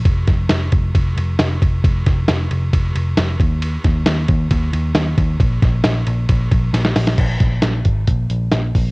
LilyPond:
<<
  \new Staff \with { instrumentName = "Picked electric bass" } { \clef bass \time 4/4 \key f \dorian \tempo 4 = 135 f,,8 f,,8 f,,8 f,,8 f,,8 f,,8 f,,8 f,,8 | f,,8 f,,8 f,,8 f,,8 f,,8 f,,8 f,,8 ees,8~ | ees,8 ees,8 ees,8 ees,8 ees,8 ees,8 ees,8 ees,8 | bes,,8 bes,,8 bes,,8 bes,,8 bes,,8 bes,,8 bes,,8 bes,,8 |
bes,,8 bes,,8 bes,,8 aes,,8 bes,,8 bes,,8 bes,,8 bes,,8 | }
  \new DrumStaff \with { instrumentName = "Drums" } \drummode { \time 4/4 <bd cymr>8 <bd cymr sn>8 <cymr sn>8 <bd cymr>8 <bd cymr>8 cymr8 <cymr sn>8 <bd cymr>8 | <bd cymr>8 <bd cymr sn>8 <cymr sn>8 cymr8 <bd cymr>8 cymr8 <cymr sn>8 <bd cymr>8 | cymr8 <bd cymr sn>8 <cymr sn>8 <bd cymr>8 <bd cymr>8 cymr8 <cymr sn>8 <bd cymr>8 | <bd cymr>8 <bd cymr sn>8 <cymr sn>8 cymr8 <bd cymr>8 <bd cymr>8 <cymr sn>16 sn16 <hho cymr sn>16 sn16 |
<cymc hh bd>8 <hh bd sn>8 <hh sn>8 <hh bd>8 <hh bd>8 hh8 <hh sn>8 <hho bd>8 | }
>>